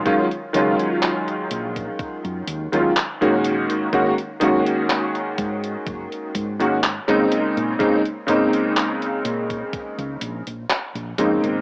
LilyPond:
<<
  \new Staff \with { instrumentName = "Electric grand piano" } { \time 4/4 \key ees \dorian \tempo 4 = 62 <ees ges aes des' f'>16 r16 <ees ges aes des' f'>2~ <ees ges aes des' f'>16 <ees ges aes des' f'>16 r16 <ees aes bes des' ges'>8. | <ees aes bes des' ges'>16 r16 <ees aes bes des' ges'>2~ <ees aes bes des' ges'>16 <ees aes bes des' ges'>16 r16 <des aes bes c' ees'>8. | <des aes bes c' ees'>16 r16 <des aes bes c' ees'>2~ <des aes bes c' ees'>16 r8. <des aes bes c' ees'>8 | }
  \new Staff \with { instrumentName = "Fretless electric bass" } { \clef bass \time 4/4 \key ees \dorian r8 des,16 r8. bes,,16 r8 ges,16 ees,16 ees,16 r16 bes,,8 aes,,16 | aes,,16 r16 ges,16 r8. aes,16 r16 ges,,16 r16 aes,8. aes,,16 r16 bes,16 | r8 aes,16 r8. bes,16 r8 des,16 bes,,16 bes,,16 r16 bes,,16 f,16 aes,,16 | }
  \new DrumStaff \with { instrumentName = "Drums" } \drummode { \time 4/4 <hh bd>16 hh16 hh16 hh16 <hc hh>16 hh16 hh16 <hh bd>16 <hh bd>16 hh16 hh16 hh16 <hc hh>16 hh16 hh16 hh16 | <hh bd>16 hh16 hh16 hh16 <hc hh>16 hh16 <hh bd>16 hh16 <hh bd>16 hh16 <hh bd>16 hh16 <hc hh>16 <hc hh>16 hh16 hh16 | <hh bd>16 hh16 hh16 hh16 <hc hh>16 hh16 hh16 <hh bd>16 <hh bd>16 hh16 hh16 hh16 <hc hh>16 hh16 hh16 hh16 | }
>>